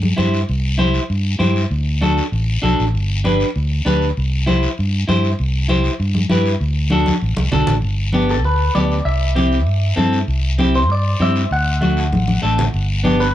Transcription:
Already playing: fingered electric bass G2
0.02 high conga
0.17 fingered electric bass G2, clean electric guitar E4 G4 C5, high conga, short guiro
0.34 short guiro
0.49 fingered electric bass C2, long guiro
0.78 clean electric guitar E4 G4 C5, high conga, short guiro
0.94 short guiro
1.10 fingered electric bass G2, long guiro
1.39 fingered electric bass G2, clean electric guitar E4 G4 C5, high conga, short guiro
1.56 short guiro
1.71 fingered electric bass D2, long guiro
2.01 clean electric guitar D4 F#4 A4, high conga, short guiro
2.18 short guiro
2.32 fingered electric bass A1, long guiro
2.62 fingered electric bass B1, clean electric guitar D4 F#4 A4, high conga, short guiro
2.79 fingered electric bass A1, short guiro
2.94 fingered electric bass G1, long guiro
3.24 clean electric guitar D4 G4 B4, high conga, short guiro
3.40 short guiro
3.56 fingered electric bass D2, long guiro
3.85 fingered electric bass D2, clean electric guitar D4 G4 B4, high conga, short guiro
4.01 short guiro
4.17 fingered electric bass C2, long guiro
4.46 clean electric guitar E4 G4 C5, high conga, short guiro
4.63 short guiro
4.78 fingered electric bass G2, long guiro
5.08 fingered electric bass G2, clean electric guitar E4 G4 C5, high conga, short guiro
5.24 short guiro
5.39 fingered electric bass C2, long guiro
5.68 clean electric guitar E4 G4 C5, high conga, short guiro
5.84 short guiro
6.00 fingered electric bass G2, long guiro
6.14 high conga
6.29 fingered electric bass G2, clean electric guitar E4 G4 B4, high conga, short guiro
6.46 short guiro
6.61 fingered electric bass D2, long guiro
6.90 clean electric guitar D4 F#4 A4, high conga, short guiro
7.06 high conga, short guiro
7.22 fingered electric bass A1, long guiro
7.37 fingered electric bass C2, high conga
7.52 fingered electric bass B1, clean electric guitar D4 F#4 A4, low conga, short guiro
7.67 fingered electric bass A1, low conga, short guiro
7.82 fingered electric bass G1, long guiro
8.12 clean electric guitar B3 D4 G4, high conga, short guiro
8.29 clean electric guitar A4, short guiro
8.44 fingered electric bass D2, clean electric guitar B4, long guiro
8.74 fingered electric bass D2, clean electric guitar B3 D4 G4 D5, high conga, short guiro
8.91 short guiro
9.05 fingered electric bass C2, clean electric guitar E5, long guiro
9.35 clean electric guitar C4 E4 G4, high conga, short guiro
9.52 short guiro
9.67 fingered electric bass G2, long guiro
9.96 fingered electric bass G2, clean electric guitar C4 E4 A4, high conga, short guiro
10.13 short guiro
10.28 fingered electric bass C2, long guiro
10.58 clean electric guitar C4 E4 G4, high conga, short guiro
10.74 clean electric guitar C5, short guiro
10.89 fingered electric bass G2, clean electric guitar D5, long guiro
11.20 fingered electric bass G2, clean electric guitar C4 E4 G4 E5, high conga, short guiro
11.36 short guiro
11.51 fingered electric bass D2, clean electric guitar F#5, long guiro
11.81 clean electric guitar A3 D4 F#4, high conga, short guiro
11.97 short guiro
12.12 fingered electric bass A1, high conga, long guiro
12.28 high conga
12.42 fingered electric bass A1, clean electric guitar A3 D4 A4, short guiro
12.58 low conga, short guiro
12.74 fingered electric bass G1, long guiro
13.03 clean electric guitar B3 D4 G4, high conga, short guiro
13.20 clean electric guitar B4, short guiro

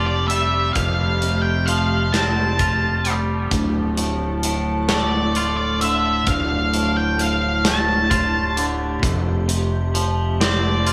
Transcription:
Already playing: fingered electric bass F1, clean electric guitar F2 C3 F3 A3 C4 F4, ambient pad F3 A3 C4 G4
0.07 lead electric guitar D5
0.28 clean electric guitar G3, lead electric guitar E5, closed hi-hat
0.73 fingered electric bass F1, clean electric guitar F2, lead electric guitar F5, kick, closed hi-hat
1.22 clean electric guitar C3, closed hi-hat
1.42 lead electric guitar G5
1.66 clean electric guitar F3, lead electric guitar F5, closed hi-hat
2.13 clean electric guitar C4, lead electric guitar A5, snare, closed hi-hat
2.59 clean electric guitar F4, kick, closed hi-hat
3.05 clean electric guitar G3, closed hi-hat
3.51 fingered electric bass D1, clean electric guitar D2, ambient pad D4 A4, kick, closed hi-hat
3.97 clean electric guitar A2, closed hi-hat
4.43 clean electric guitar A2, closed hi-hat
4.89 clean electric guitar A3, lead electric guitar D5, snare, closed hi-hat
5.35 clean electric guitar F4, closed hi-hat
5.57 lead electric guitar D5
5.81 clean electric guitar D3, lead electric guitar E5, closed hi-hat
6.27 fingered electric bass D1, clean electric guitar D2, ambient pad G4, lead electric guitar F5, kick, closed hi-hat
6.74 clean electric guitar A2, closed hi-hat
6.97 lead electric guitar G5
7.18 clean electric guitar A2, lead electric guitar F5, closed hi-hat
7.64 clean electric guitar A3, lead electric guitar A5, snare, closed hi-hat
8.10 clean electric guitar F4, kick, closed hi-hat
8.57 clean electric guitar D3, closed hi-hat
9.02 fingered electric bass F1, clean electric guitar F2, ambient pad F3 A3 C4, kick, closed hi-hat
9.48 clean electric guitar C3, closed hi-hat
9.94 clean electric guitar F3, closed hi-hat
10.40 clean electric guitar C4, lead electric guitar D5, snare, closed hi-hat
10.87 clean electric guitar F4, closed hi-hat

